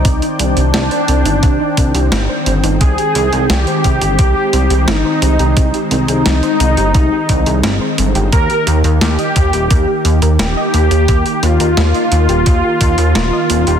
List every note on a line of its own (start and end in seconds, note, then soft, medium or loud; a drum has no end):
0.00 13.79 D#3 medium
0.00 8.29 C4 medium
0.00 0.26 D#4 loud
0.00 2.77 D5 medium
0.00 8.29 G5 medium
0.05 0.21 C2 loud
0.05 0.18 C4 medium
0.05 kick loud
0.05 closed hi-hat medium
0.22 0.30 D#4 medium
0.22 closed hi-hat soft
0.39 0.55 C2 medium
0.39 0.52 C4 medium
0.39 2.67 D4 loud
0.39 closed hi-hat medium
0.57 0.72 C2 medium
0.57 0.70 G4 medium
0.57 closed hi-hat medium
0.74 0.90 C2 loud
0.74 0.82 C4 loud
0.74 snare loud
0.74 closed hi-hat medium
0.91 0.99 C5 medium
0.91 closed hi-hat soft
1.08 1.24 C2 medium
1.08 1.16 C4 medium
1.08 closed hi-hat medium
1.25 1.41 G1 medium
1.25 1.34 D#4 loud
1.25 closed hi-hat medium
1.43 1.59 C2 loud
1.43 1.56 C4 medium
1.43 kick loud
1.43 closed hi-hat medium
1.60 1.68 D#4 medium
1.77 1.93 C2 medium
1.77 1.90 C4 medium
1.77 kick medium
1.77 closed hi-hat medium
1.94 2.10 C2 medium
1.94 2.08 G4 medium
1.94 closed hi-hat medium
2.12 2.27 G1 loud
2.12 2.20 C4 loud
2.12 snare loud
2.12 closed hi-hat medium
2.29 2.37 C5 medium
2.46 2.62 G1 medium
2.46 2.54 C4 medium
2.46 closed hi-hat medium
2.64 2.79 G1 medium
2.64 2.71 D#4 loud
2.64 closed hi-hat medium
2.81 2.96 C2 loud
2.81 8.29 G#3 medium
2.81 2.94 C4 medium
2.81 3.52 G#4 loud
2.81 kick loud
2.81 closed hi-hat medium
2.98 3.06 G4 medium
2.98 closed hi-hat soft
3.15 3.31 C2 medium
3.15 3.28 C4 medium
3.15 closed hi-hat medium
3.32 3.48 C2 medium
3.32 3.46 G#4 medium
3.32 closed hi-hat soft
3.50 3.65 C2 loud
3.50 3.58 C4 loud
3.50 4.89 G4 loud
3.50 snare loud
3.50 closed hi-hat medium
3.67 3.75 C5 medium
3.67 closed hi-hat soft
3.84 4.00 C2 medium
3.84 3.92 C4 medium
3.84 kick medium
3.84 closed hi-hat medium
4.01 4.17 G1 medium
4.01 4.09 G4 loud
4.01 closed hi-hat medium
4.19 4.34 C2 loud
4.19 4.32 C4 medium
4.19 kick loud
4.19 closed hi-hat medium
4.36 4.44 G4 medium
4.53 4.69 C2 medium
4.53 4.66 C4 medium
4.53 closed hi-hat medium
4.70 4.86 C2 medium
4.70 4.83 G#4 medium
4.70 closed hi-hat medium
4.88 5.03 G1 loud
4.88 4.96 C4 loud
4.88 5.77 D#4 loud
4.88 snare loud
4.88 closed hi-hat medium
5.05 5.13 C5 medium
5.22 5.38 C2 medium
5.22 5.30 C4 medium
5.22 closed hi-hat medium
5.39 5.55 C2 medium
5.39 5.47 G4 medium
5.39 closed hi-hat soft
5.57 5.72 C2 loud
5.57 5.70 C4 medium
5.57 kick loud
5.57 closed hi-hat medium
5.74 5.82 G4 medium
5.74 closed hi-hat soft
5.91 6.07 C2 medium
5.91 6.04 C4 medium
5.91 8.19 D#4 loud
5.91 closed hi-hat medium
6.08 6.24 C2 medium
6.08 6.21 G#4 medium
6.08 closed hi-hat soft
6.26 6.41 C2 loud
6.26 6.34 C4 loud
6.26 snare loud
6.26 closed hi-hat medium
6.43 6.51 C5 medium
6.43 closed hi-hat soft
6.60 6.76 C2 medium
6.60 6.68 C4 medium
6.60 closed hi-hat medium
6.77 6.93 G1 medium
6.77 6.85 G4 loud
6.77 closed hi-hat soft
6.95 7.10 C2 loud
6.95 7.08 C4 medium
6.95 kick loud
6.95 closed hi-hat medium
7.12 7.20 G4 medium
7.29 7.45 C2 medium
7.29 7.42 C4 medium
7.29 kick medium
7.29 closed hi-hat medium
7.46 7.62 C2 medium
7.46 7.59 G#4 medium
7.46 closed hi-hat medium
7.63 7.79 G1 loud
7.63 7.72 C4 loud
7.63 snare loud
7.63 closed hi-hat medium
7.81 7.89 C5 medium
7.98 8.14 G1 medium
7.98 8.06 C4 medium
7.98 closed hi-hat medium
8.15 8.31 G1 medium
8.15 8.23 G4 medium
8.15 closed hi-hat soft
8.32 8.48 D#2 loud
8.32 13.79 A#3 medium
8.32 8.46 A#3 medium
8.32 8.78 A#4 loud
8.32 kick loud
8.32 closed hi-hat medium
8.50 8.58 G4 medium
8.50 closed hi-hat soft
8.67 8.83 D#2 medium
8.67 8.80 A#3 medium
8.67 closed hi-hat medium
8.84 9.00 D#2 medium
8.84 8.97 A#4 medium
8.84 closed hi-hat soft
9.01 9.17 D#2 loud
9.01 9.09 A#3 loud
9.01 10.26 G4 loud
9.01 snare loud
9.01 closed hi-hat medium
9.19 9.27 D#5 medium
9.19 closed hi-hat soft
9.36 9.52 D#2 medium
9.36 9.44 A#3 medium
9.36 kick medium
9.36 closed hi-hat medium
9.53 9.69 D#1 medium
9.53 9.61 G4 loud
9.53 closed hi-hat soft
9.71 9.86 D#2 loud
9.71 9.84 A#3 medium
9.71 kick loud
9.71 closed hi-hat medium
9.88 9.96 G4 medium
10.05 10.20 D#2 medium
10.05 10.18 A#3 medium
10.05 closed hi-hat medium
10.22 10.38 D#2 medium
10.22 10.35 A#4 medium
10.22 closed hi-hat soft
10.39 10.55 D#1 loud
10.39 10.47 A#3 loud
10.39 11.45 G4 loud
10.39 snare loud
10.39 closed hi-hat medium
10.57 10.65 D#5 medium
10.74 10.89 D#2 medium
10.74 10.82 A#3 medium
10.74 closed hi-hat medium
10.91 11.07 D#2 medium
10.91 10.99 G4 medium
10.91 closed hi-hat soft
11.08 11.24 D#2 loud
11.08 11.22 A#3 medium
11.08 kick loud
11.08 closed hi-hat medium
11.26 11.34 G4 medium
11.26 closed hi-hat soft
11.43 11.58 D#2 medium
11.43 11.56 A#3 medium
11.43 13.79 F4 loud
11.43 closed hi-hat medium
11.60 11.76 D#2 medium
11.60 11.73 A#4 medium
11.60 closed hi-hat soft
11.77 11.93 D#2 loud
11.77 11.85 A#3 loud
11.77 snare loud
11.77 closed hi-hat medium
11.94 12.03 D#5 medium
11.94 closed hi-hat soft
12.12 12.27 D#2 medium
12.12 12.20 A#3 medium
12.12 closed hi-hat medium
12.29 12.45 D#1 medium
12.29 12.37 G4 loud
12.29 closed hi-hat soft
12.46 12.62 D#2 loud
12.46 12.59 A#3 medium
12.46 kick loud
12.46 closed hi-hat medium
12.64 12.71 G4 medium
12.81 12.97 D#2 medium
12.81 12.94 A#3 medium
12.81 kick medium
12.81 closed hi-hat medium
12.98 13.14 D#2 medium
12.98 13.11 A#4 medium
12.98 closed hi-hat soft
13.15 13.31 D#1 loud
13.15 13.23 A#3 loud
13.15 snare loud
13.15 closed hi-hat medium
13.33 13.40 D#5 medium
13.50 13.65 D#1 medium
13.50 13.58 A#3 medium
13.50 closed hi-hat medium
13.67 13.79 D#1 medium
13.67 13.75 G4 loud
13.67 closed hi-hat soft